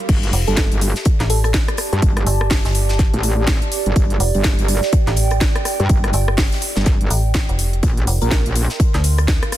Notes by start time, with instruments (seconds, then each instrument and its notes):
Already playing: ambient pad F5 C6
0.09 wobble bass G1, ambient pad G4, kick, closed hi-hat, crash
0.23 closed hi-hat
0.33 fm bass F1, closed hi-hat, open hi-hat
0.47 wobble bass G1, fm electric piano A4, closed hi-hat
0.57 kick, snare, closed hi-hat
0.72 wobble bass G1, closed hi-hat
0.77 ambient pad D5
0.81 closed hi-hat, open hi-hat
0.96 snare, closed hi-hat
1.05 kick, closed hi-hat
1.17 fm bass A1, ambient pad A5, snare, closed hi-hat
1.30 fm electric piano A4, closed hi-hat, open hi-hat
1.44 fm electric piano A4, cross-stick, closed hi-hat
1.54 kick, snare, closed hi-hat
1.68 cross-stick, closed hi-hat
1.77 cross-stick, closed hi-hat, open hi-hat
1.93 wobble bass G2, closed hi-hat
2.02 wobble bass G1, kick, closed hi-hat
2.17 cross-stick, closed hi-hat
2.27 fm bass G1, closed hi-hat, open hi-hat
2.41 cross-stick
2.50 kick, snare, closed hi-hat, open hi-hat
2.65 fm bass G1, snare, closed hi-hat
2.75 closed hi-hat, open hi-hat
2.89 snare, closed hi-hat
2.99 kick, snare, closed hi-hat
3.14 wobble bass A1, closed hi-hat
3.23 closed hi-hat, open hi-hat
3.47 kick, snare, closed hi-hat
3.62 closed hi-hat
3.72 closed hi-hat, open hi-hat
3.86 wobble bass G1, closed hi-hat
3.96 wobble bass G1, kick, closed hi-hat
4.10 closed hi-hat
4.20 fm bass F1, closed hi-hat, open hi-hat
4.34 wobble bass G1, closed hi-hat
4.44 kick, snare, closed hi-hat
4.49 ambient pad G5
4.59 wobble bass G1, closed hi-hat
4.68 closed hi-hat, open hi-hat
4.83 snare, closed hi-hat
4.93 kick, closed hi-hat
5.07 fm bass A1, snare, closed hi-hat
5.17 closed hi-hat, open hi-hat
5.31 cross-stick, closed hi-hat
5.41 kick, snare, closed hi-hat
5.56 cross-stick, closed hi-hat
5.65 cross-stick, closed hi-hat, open hi-hat
5.80 wobble bass G2, closed hi-hat
5.89 wobble bass G1, kick, closed hi-hat
6.04 cross-stick, closed hi-hat
6.13 fm bass G1, closed hi-hat, open hi-hat
6.28 cross-stick
6.38 kick, snare, closed hi-hat, open hi-hat
6.52 snare, closed hi-hat
6.62 closed hi-hat, open hi-hat
6.76 wobble bass G1, snare, closed hi-hat
6.86 kick, snare, closed hi-hat
7.01 wobble bass G1, closed hi-hat
7.10 fm bass A1, closed hi-hat, open hi-hat
7.34 kick, snare, closed hi-hat
7.49 fm bass F1, closed hi-hat
7.59 closed hi-hat, open hi-hat
7.73 closed hi-hat
7.83 wobble bass A#1, ambient pad A#4, kick, closed hi-hat
7.97 closed hi-hat
8.04 fm bass F1, ambient pad C6, closed hi-hat, open hi-hat
8.21 wobble bass A#1, fm electric piano A#4, closed hi-hat
8.31 kick, snare, closed hi-hat
8.46 wobble bass A#1, closed hi-hat
8.55 closed hi-hat, open hi-hat
8.70 snare, closed hi-hat
8.74 ambient pad F5
8.80 kick, closed hi-hat
8.94 fm bass D2, snare, closed hi-hat
9.04 closed hi-hat, open hi-hat
9.18 cross-stick, closed hi-hat
9.28 kick, snare, closed hi-hat
9.43 cross-stick, closed hi-hat
9.52 cross-stick, closed hi-hat, open hi-hat